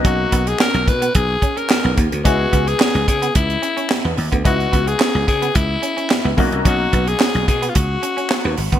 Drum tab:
HH |x-xx-xxxx-xx--xx|x-xx-xxxxxxx--ox|xxxx--xxx-xx--ox|x-xx-xxxx-xx--ox|
CP |----x-------x---|----x-------x---|----x-------x---|----x-------x---|
SD |----o-------o---|----o-------o---|----o-------o---|----o-------o---|
BD |o-o---o-o-o---o-|o-o---o-o------o|o-o---o-o-----o-|o-o---o-o------o|